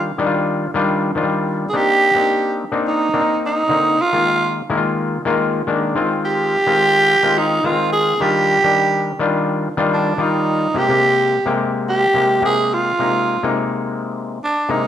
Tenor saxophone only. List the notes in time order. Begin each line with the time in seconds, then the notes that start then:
1.69 G#4
1.76 G4
2.88 D#4
3.46 D#4
4.01 F4
6.25 G4
7.38 D#4
7.66 F4
7.93 G#4
8.21 G4
9.94 D4
10.22 D#4
10.78 G4
11.89 G4
12.45 G#4
12.74 F4
14.44 D4
14.72 D#4